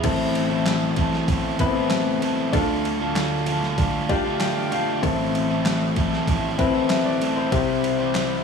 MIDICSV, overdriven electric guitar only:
0, 0, Header, 1, 2, 480
1, 0, Start_track
1, 0, Key_signature, 0, "minor"
1, 0, Tempo, 623312
1, 32, Time_signature, 4, 2, 24, 8
1, 6496, End_track
2, 0, Start_track
2, 0, Title_t, "Overdriven electric guitar"
2, 0, Program_c, 0, 29
2, 26, Note_on_c, 0, 57, 57
2, 35, Note_on_c, 0, 60, 62
2, 43, Note_on_c, 0, 64, 64
2, 50, Note_on_c, 0, 69, 71
2, 377, Note_off_c, 0, 69, 0
2, 382, Note_off_c, 0, 64, 0
2, 384, Note_off_c, 0, 60, 0
2, 386, Note_on_c, 0, 69, 76
2, 389, Note_off_c, 0, 57, 0
2, 391, Note_on_c, 0, 64, 71
2, 393, Note_on_c, 0, 60, 74
2, 398, Note_on_c, 0, 57, 61
2, 400, Note_on_c, 0, 52, 63
2, 402, Note_on_c, 0, 45, 60
2, 737, Note_off_c, 0, 45, 0
2, 741, Note_off_c, 0, 52, 0
2, 744, Note_off_c, 0, 57, 0
2, 746, Note_off_c, 0, 60, 0
2, 746, Note_on_c, 0, 45, 92
2, 749, Note_off_c, 0, 69, 0
2, 750, Note_on_c, 0, 52, 90
2, 752, Note_off_c, 0, 64, 0
2, 754, Note_on_c, 0, 57, 93
2, 756, Note_on_c, 0, 60, 103
2, 759, Note_on_c, 0, 64, 100
2, 762, Note_on_c, 0, 69, 98
2, 978, Note_off_c, 0, 57, 0
2, 988, Note_off_c, 0, 60, 0
2, 988, Note_on_c, 0, 57, 69
2, 989, Note_off_c, 0, 45, 0
2, 991, Note_off_c, 0, 52, 0
2, 996, Note_off_c, 0, 64, 0
2, 997, Note_off_c, 0, 69, 0
2, 997, Note_on_c, 0, 60, 67
2, 1005, Note_on_c, 0, 64, 63
2, 1012, Note_on_c, 0, 69, 73
2, 1343, Note_off_c, 0, 69, 0
2, 1346, Note_off_c, 0, 64, 0
2, 1350, Note_off_c, 0, 57, 0
2, 1351, Note_off_c, 0, 60, 0
2, 1352, Note_on_c, 0, 69, 80
2, 1355, Note_on_c, 0, 64, 89
2, 1360, Note_on_c, 0, 60, 81
2, 1362, Note_on_c, 0, 57, 77
2, 1363, Note_on_c, 0, 52, 77
2, 1367, Note_on_c, 0, 45, 73
2, 1696, Note_off_c, 0, 57, 0
2, 1705, Note_on_c, 0, 57, 75
2, 1706, Note_off_c, 0, 60, 0
2, 1712, Note_off_c, 0, 69, 0
2, 1713, Note_off_c, 0, 64, 0
2, 1715, Note_on_c, 0, 60, 70
2, 1718, Note_off_c, 0, 52, 0
2, 1719, Note_off_c, 0, 45, 0
2, 1723, Note_on_c, 0, 64, 69
2, 1727, Note_on_c, 0, 69, 74
2, 1938, Note_off_c, 0, 57, 0
2, 1947, Note_on_c, 0, 57, 69
2, 1953, Note_off_c, 0, 60, 0
2, 1956, Note_on_c, 0, 62, 62
2, 1957, Note_off_c, 0, 64, 0
2, 1960, Note_off_c, 0, 69, 0
2, 1964, Note_on_c, 0, 65, 69
2, 1971, Note_on_c, 0, 69, 69
2, 2303, Note_off_c, 0, 69, 0
2, 2308, Note_off_c, 0, 65, 0
2, 2310, Note_off_c, 0, 57, 0
2, 2312, Note_off_c, 0, 62, 0
2, 2312, Note_on_c, 0, 69, 75
2, 2317, Note_on_c, 0, 65, 73
2, 2321, Note_on_c, 0, 62, 69
2, 2325, Note_on_c, 0, 57, 66
2, 2328, Note_on_c, 0, 50, 62
2, 2660, Note_off_c, 0, 50, 0
2, 2666, Note_off_c, 0, 57, 0
2, 2669, Note_on_c, 0, 50, 94
2, 2671, Note_off_c, 0, 62, 0
2, 2672, Note_off_c, 0, 65, 0
2, 2672, Note_off_c, 0, 69, 0
2, 2675, Note_on_c, 0, 57, 92
2, 2680, Note_on_c, 0, 62, 96
2, 2682, Note_on_c, 0, 65, 96
2, 2687, Note_on_c, 0, 69, 96
2, 2896, Note_off_c, 0, 57, 0
2, 2905, Note_off_c, 0, 62, 0
2, 2906, Note_on_c, 0, 57, 58
2, 2910, Note_off_c, 0, 50, 0
2, 2912, Note_off_c, 0, 65, 0
2, 2915, Note_on_c, 0, 62, 62
2, 2919, Note_off_c, 0, 69, 0
2, 2921, Note_on_c, 0, 65, 74
2, 2930, Note_on_c, 0, 69, 71
2, 3260, Note_off_c, 0, 69, 0
2, 3265, Note_off_c, 0, 65, 0
2, 3269, Note_off_c, 0, 57, 0
2, 3269, Note_off_c, 0, 62, 0
2, 3269, Note_on_c, 0, 69, 91
2, 3274, Note_on_c, 0, 65, 77
2, 3278, Note_on_c, 0, 62, 82
2, 3282, Note_on_c, 0, 57, 77
2, 3286, Note_on_c, 0, 50, 74
2, 3616, Note_off_c, 0, 57, 0
2, 3625, Note_off_c, 0, 62, 0
2, 3626, Note_on_c, 0, 57, 72
2, 3630, Note_off_c, 0, 69, 0
2, 3633, Note_off_c, 0, 65, 0
2, 3634, Note_on_c, 0, 62, 76
2, 3639, Note_off_c, 0, 50, 0
2, 3643, Note_on_c, 0, 65, 67
2, 3649, Note_on_c, 0, 69, 74
2, 3864, Note_off_c, 0, 57, 0
2, 3873, Note_off_c, 0, 62, 0
2, 3873, Note_on_c, 0, 57, 64
2, 3877, Note_off_c, 0, 65, 0
2, 3880, Note_off_c, 0, 69, 0
2, 3882, Note_on_c, 0, 60, 69
2, 3888, Note_on_c, 0, 64, 66
2, 3896, Note_on_c, 0, 69, 72
2, 4226, Note_off_c, 0, 69, 0
2, 4228, Note_off_c, 0, 64, 0
2, 4232, Note_off_c, 0, 57, 0
2, 4232, Note_off_c, 0, 60, 0
2, 4235, Note_on_c, 0, 69, 78
2, 4237, Note_on_c, 0, 64, 74
2, 4241, Note_on_c, 0, 60, 74
2, 4245, Note_on_c, 0, 57, 70
2, 4247, Note_on_c, 0, 52, 65
2, 4249, Note_on_c, 0, 45, 60
2, 4583, Note_off_c, 0, 45, 0
2, 4584, Note_off_c, 0, 52, 0
2, 4589, Note_off_c, 0, 57, 0
2, 4592, Note_on_c, 0, 45, 87
2, 4593, Note_off_c, 0, 60, 0
2, 4593, Note_off_c, 0, 69, 0
2, 4593, Note_on_c, 0, 52, 92
2, 4594, Note_off_c, 0, 64, 0
2, 4598, Note_on_c, 0, 57, 100
2, 4602, Note_on_c, 0, 60, 95
2, 4604, Note_on_c, 0, 64, 112
2, 4607, Note_on_c, 0, 69, 93
2, 4822, Note_off_c, 0, 57, 0
2, 4832, Note_off_c, 0, 45, 0
2, 4832, Note_off_c, 0, 52, 0
2, 4832, Note_off_c, 0, 60, 0
2, 4832, Note_on_c, 0, 57, 64
2, 4838, Note_off_c, 0, 64, 0
2, 4839, Note_off_c, 0, 69, 0
2, 4841, Note_on_c, 0, 60, 71
2, 4847, Note_on_c, 0, 64, 73
2, 4854, Note_on_c, 0, 69, 70
2, 5186, Note_off_c, 0, 69, 0
2, 5190, Note_off_c, 0, 64, 0
2, 5192, Note_off_c, 0, 57, 0
2, 5194, Note_off_c, 0, 60, 0
2, 5195, Note_on_c, 0, 69, 94
2, 5200, Note_on_c, 0, 64, 86
2, 5204, Note_on_c, 0, 60, 77
2, 5206, Note_on_c, 0, 57, 77
2, 5210, Note_on_c, 0, 52, 70
2, 5212, Note_on_c, 0, 45, 65
2, 5542, Note_off_c, 0, 57, 0
2, 5551, Note_off_c, 0, 60, 0
2, 5551, Note_on_c, 0, 57, 67
2, 5553, Note_off_c, 0, 69, 0
2, 5556, Note_off_c, 0, 64, 0
2, 5560, Note_on_c, 0, 60, 69
2, 5561, Note_off_c, 0, 52, 0
2, 5562, Note_off_c, 0, 45, 0
2, 5569, Note_on_c, 0, 64, 72
2, 5575, Note_on_c, 0, 69, 80
2, 5790, Note_off_c, 0, 57, 0
2, 5793, Note_off_c, 0, 60, 0
2, 5793, Note_on_c, 0, 55, 67
2, 5800, Note_off_c, 0, 64, 0
2, 5802, Note_on_c, 0, 60, 69
2, 5803, Note_off_c, 0, 69, 0
2, 5810, Note_on_c, 0, 64, 65
2, 5815, Note_on_c, 0, 72, 69
2, 6141, Note_off_c, 0, 72, 0
2, 6146, Note_off_c, 0, 64, 0
2, 6150, Note_off_c, 0, 60, 0
2, 6150, Note_on_c, 0, 72, 78
2, 6153, Note_off_c, 0, 55, 0
2, 6155, Note_on_c, 0, 64, 75
2, 6160, Note_on_c, 0, 60, 78
2, 6164, Note_on_c, 0, 55, 72
2, 6166, Note_on_c, 0, 52, 60
2, 6168, Note_on_c, 0, 48, 61
2, 6496, Note_off_c, 0, 48, 0
2, 6496, Note_off_c, 0, 52, 0
2, 6496, Note_off_c, 0, 55, 0
2, 6496, Note_off_c, 0, 60, 0
2, 6496, Note_off_c, 0, 64, 0
2, 6496, Note_off_c, 0, 72, 0
2, 6496, End_track
0, 0, End_of_file